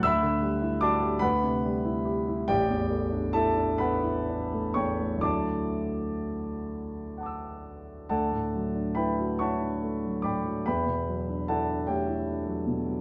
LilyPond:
<<
  \new Staff \with { instrumentName = "Grand piano" } { \time 6/8 \key d \major \tempo 4. = 47 << { r2. | r2. | r2 <fis'' a'' d''' e'''>4 | r2. |
r2. | } \\ { <e'' b'' e'''>4 <d'' a'' d'''>8 <b' fis'' b''>4. | <g' d'' g''>4 <a' e'' a''>8 <b' fis'' b''>4 <cis'' g'' cis'''>8 | <d'' a'' d'''>2~ <d'' a'' d'''>8 r8 | <a' d'' fis'' a''>4 <b' e'' g'' b''>8 <cis'' fis'' a'' cis'''>4 <d'' g'' b'' d'''>8 |
<b' e'' g'' b''>4 <a' d'' fis'' a''>8 <g' cis'' e'' g''>4. | } >> }
  \new Staff \with { instrumentName = "Grand piano" } { \time 6/8 \key d \major d,16 d16 g16 e'16 fis'16 g'16 d,16 c16 g16 e'16 g'16 e'16 | a,,16 e,16 a16 d'16 e'16 d'16 b16 e'16 d'16 a16 e,16 a16 | <d, fis a d' e'>2. | d,16 a,16 fis16 d'16 e'16 fis'16 e'16 d'16 a16 fis16 a,16 fis16 |
e,16 b,16 fis16 d'16 e'16 d'16 a16 e'16 d'16 fis16 b,16 fis16 | }
>>